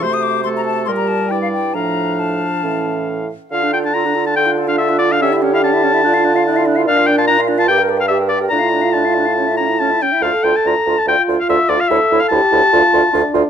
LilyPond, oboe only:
\new Staff \with { instrumentName = "Oboe" } { \time 4/4 \key d \minor \tempo 4 = 143 c''4 a'4 bes'4 d''4 | f''2.~ f''8 r8 | f''8 g''16 a''16 bes''8. a''16 g''8. f''16 e''8 d''16 f''16 | e''8. f''16 a''2~ a''8 r8 |
f''8 g''16 a''16 bes''8. a''16 g''8. f''16 e''8 d''8 | bes''4 a''4. bes''8 a''8 g''8 | f''8 g''16 a''16 bes''8. a''16 g''8. f''16 e''8 d''16 f''16 | e''8. f''16 a''2~ a''8 r8 | }